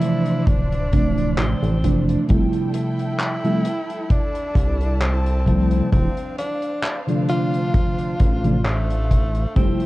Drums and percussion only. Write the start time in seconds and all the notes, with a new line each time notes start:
0.02 closed hi-hat
0.26 closed hi-hat
0.47 kick, closed hi-hat
0.72 closed hi-hat
0.93 kick, closed hi-hat
1.18 closed hi-hat
1.38 clap, closed hi-hat
1.64 closed hi-hat
1.84 kick, closed hi-hat
2.09 closed hi-hat
2.29 kick, closed hi-hat
2.53 closed hi-hat
2.74 closed hi-hat
2.99 closed hi-hat
3.19 clap, closed hi-hat
3.45 closed hi-hat
3.65 closed hi-hat
3.90 closed hi-hat
4.10 kick, closed hi-hat
4.35 closed hi-hat
4.56 kick, closed hi-hat
4.81 closed hi-hat
5.02 clap, closed hi-hat
5.26 closed hi-hat
5.46 kick, closed hi-hat
5.71 closed hi-hat
5.93 kick, closed hi-hat
6.17 closed hi-hat
6.38 closed hi-hat
6.62 closed hi-hat
6.83 clap, closed hi-hat
7.09 closed hi-hat
7.29 closed hi-hat
7.54 closed hi-hat
7.74 kick, closed hi-hat
7.98 closed hi-hat
8.19 kick, closed hi-hat
8.44 closed hi-hat
8.65 clap, closed hi-hat
8.90 closed hi-hat
9.11 kick, closed hi-hat
9.34 closed hi-hat
9.56 kick, closed hi-hat
9.80 closed hi-hat